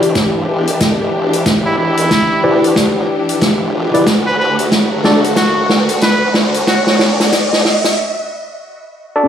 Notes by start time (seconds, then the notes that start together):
Already playing: A1 E3 D4 G4, riser
0.02 closed hi-hat
0.15 kick, snare, closed hi-hat
0.48 E1
0.67 closed hi-hat
0.80 kick, snare, closed hi-hat
1.33 closed hi-hat
1.46 E1, kick, snare, closed hi-hat
1.66 E4
1.78 E4
1.97 E1, closed hi-hat
2.11 kick, snare, closed hi-hat
2.44 D2 E4 G4 B4 D5
2.64 closed hi-hat
2.76 kick, snare, closed hi-hat
2.96 G1
3.29 closed hi-hat
3.42 E1, kick, snare, closed hi-hat
3.74 E1
3.94 E4 G4 B4 D5, closed hi-hat
4.06 D2 D3 A3 F#4, kick, snare, closed hi-hat
4.27 B4
4.39 B4
4.59 D2, closed hi-hat
4.72 F#1, kick, snare, closed hi-hat
5.04 D4 F#4 A4 D5, snare
5.24 closed hi-hat
5.36 F#4, kick, snare, closed hi-hat
5.69 D2, snare
5.89 closed hi-hat
6.01 B4, kick, snare, closed hi-hat
6.34 snare
6.54 closed hi-hat
6.67 D2 F#4, kick, snare, closed hi-hat
6.87 F#4, snare
6.99 snare
7.20 D2, snare, closed hi-hat
7.32 D2, kick, snare, closed hi-hat
7.53 snare
7.65 snare
7.84 snare, closed hi-hat
9.16 D4 F#4 A4 D5